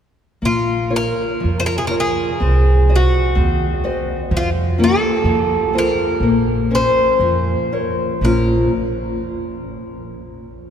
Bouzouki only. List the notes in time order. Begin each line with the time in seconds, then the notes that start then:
0.45 F4
0.96 A#4
1.60 C5
1.66 A#4
1.78 G#4
1.87 A#4
2.00 G#4
2.96 F#4
4.37 F4
4.84 A4
5.78 A#4
6.75 C5
8.25 A#4